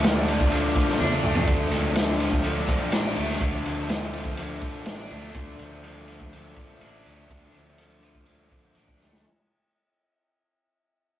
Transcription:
0.00 0.72 D2 medium
0.00 0.30 F3 medium
0.00 1.24 A3 medium
0.00 1.00 D4 medium
0.00 1.43 F4 medium
0.00 1.44 D5 medium
0.00 1.45 A5 medium
0.00 ride medium
0.05 0.53 D3 medium
0.05 snare loud
0.28 0.77 F3 medium
0.28 ride medium
0.40 kick medium
0.52 1.45 D3 medium
0.52 ride medium
0.75 1.71 F3 medium
0.75 kick medium
0.75 ride medium
0.88 snare soft
0.99 1.22 E2 medium
0.99 2.92 D4 medium
0.99 high tom medium
1.23 1.45 D2 medium
1.23 3.17 A3 medium
1.23 mid tom medium
1.35 floor tom medium
1.46 1.70 D2 medium
1.46 1.95 D3 medium
1.46 kick medium
1.46 ride medium
1.71 2.64 D2 medium
1.71 2.21 F3 medium
1.71 snare soft
1.71 ride medium
1.95 2.44 D3 medium
1.95 snare loud
1.95 ride medium
2.20 2.67 F3 medium
2.20 snare soft
2.20 ride medium
2.32 kick medium
2.44 3.41 D3 medium
2.44 ride medium
2.68 3.66 F3 medium
2.68 kick medium
2.68 ride medium
2.92 3.14 A1 medium
2.92 4.88 D4 medium
2.92 snare loud
2.92 ride medium
3.16 3.39 D2 medium
3.16 5.13 A3 medium
3.16 ride medium
3.30 snare soft
3.41 3.63 D2 medium
3.41 3.90 D3 medium
3.41 kick loud
3.41 ride medium
3.65 4.58 D2 medium
3.65 4.14 F3 medium
3.65 ride medium
3.89 4.38 D3 medium
3.89 snare loud
3.89 ride medium
4.13 4.63 F3 medium
4.13 ride medium
4.25 kick medium
4.37 5.38 D3 medium
4.37 ride medium
4.61 5.62 F3 medium
4.61 kick medium
4.61 ride medium
4.86 5.09 A1 medium
4.86 6.83 D4 medium
4.86 snare loud
4.86 ride medium
5.10 5.33 D2 medium
5.10 7.08 A3 medium
5.10 ride medium
5.34 5.57 D2 medium
5.34 5.86 D3 medium
5.34 kick loud
5.34 ride medium
5.59 6.52 D2 medium
5.59 6.10 F3 medium
5.59 ride medium
5.84 6.34 D3 medium
5.84 ride medium
6.08 6.59 F3 medium
6.08 ride medium
6.20 kick medium
6.33 7.30 D3 medium
6.33 ride medium
6.56 7.54 F3 medium
6.56 kick medium
6.56 ride medium
6.81 7.03 A1 medium
6.81 8.04 D4 medium
6.81 ride medium
7.06 7.28 D2 medium
7.06 8.29 A3 medium
7.06 ride medium
7.30 7.52 D2 medium
7.30 7.77 D3 medium
7.30 kick medium
7.30 ride medium
7.54 8.47 D2 medium
7.54 8.01 F3 medium
7.54 ride medium
7.78 8.25 D3 medium
7.78 ride medium
8.02 8.50 F3 medium
8.02 ride medium
8.15 kick medium
8.26 9.24 D3 medium
8.26 ride medium
8.51 9.24 F3 medium
8.51 kick medium
8.51 ride medium
8.75 8.98 A1 medium
8.75 9.25 D4 medium
8.75 ride medium
8.88 kick medium
9.01 9.23 D2 medium
9.01 9.25 A3 medium
9.01 snare soft
9.13 snare medium

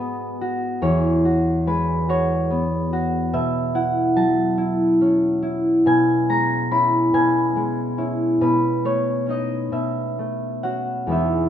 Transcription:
0.00 0.86 G#2 soft
0.00 1.66 G#3 soft
0.00 2.49 B3 soft
0.00 0.40 F#4 soft
0.00 0.85 D#5 medium
0.00 3.02 F#5 medium
0.00 2.56 G#5 medium
0.41 1.24 F#4 medium
0.82 3.36 E2 medium
0.82 2.08 C#5 medium
1.25 2.07 F#4 soft
1.67 3.36 G#3 soft
1.67 5.57 B4 medium
2.09 2.92 F#4 soft
2.09 5.99 C#5 medium
2.50 6.40 B3 soft
2.93 5.90 F#4 medium
3.33 5.85 B2 medium
3.33 7.24 E5 medium
3.75 4.56 E4 soft
3.75 5.90 F#5 medium
4.16 5.90 F#3 soft
4.16 5.90 A5 medium
4.58 5.41 E4 medium
5.01 6.70 C#4 soft
5.43 6.70 E4 soft
5.86 7.13 B2 medium
5.86 7.13 G#5 medium
6.29 7.55 G#3 soft
6.29 7.01 A#5 medium
6.71 7.97 C#4 soft
6.71 7.97 E4 soft
6.71 10.61 B5 medium
7.14 8.40 B2 medium
7.14 8.45 G#5 medium
7.56 8.45 G#3 soft
7.98 9.26 C#4 soft
7.98 8.45 E4 soft
8.41 9.71 B2 medium
8.41 11.49 B4 medium
8.85 10.18 A3 soft
8.85 11.15 C#5 medium
9.26 10.62 C#4 soft
9.26 9.77 D#4 soft
9.30 9.76 D#5 medium
9.72 11.15 B2 soft
9.72 11.10 E5 medium
10.19 11.16 A3 soft
10.63 11.15 C#4 soft
10.63 11.15 F#4 soft
10.63 11.15 F#5 medium
11.07 11.49 E2 soft
11.07 11.49 G#3 soft
11.07 11.49 B3 soft
11.07 11.49 D#4 soft
11.12 11.49 E5 medium

